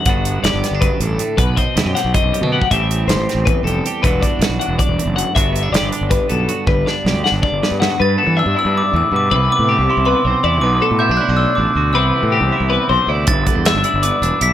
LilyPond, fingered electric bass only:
\new Staff \with { instrumentName = "Fingered electric bass" } { \clef bass \time 7/8 \key g \major \tempo 4 = 159 g,,4 fis,,16 g,,16 r16 g,,8 r16 a,,8 r8 | b,,8 r8 dis,16 fis,16 r16 b,,16 r16 b,,16 r16 b,8 r16 | a,,4 g,,16 a,,16 r16 a,,8 r16 f,,8 r8 | e,,8 r8 a,,16 b,,16 r16 e,,16 r16 e,,16 r16 fis,,8 r16 |
g,,4 fis,,16 g,,16 r16 g,,8 r16 b,,8 r8 | g,,8 r8 b,,16 d,16 r16 g,,16 r16 g,,16 r16 g,8 r16 | g,8 r16 e8 g,16 r16 g,8 r16 e,16 r16 g,8 | c,8 r16 a,8 c,16 r16 c,8 r16 b,,16 r16 e,8 |
b,,8 r16 a,8 b,,16 r16 b,,8 r16 a,,16 r16 d,8 | c,8 r16 a,8 c,16 r16 c,8 r16 b,,16 r16 d,8 | g,,8 r16 e,8 g,,16 r16 g,,8 r16 e,,16 r16 b,,8 | }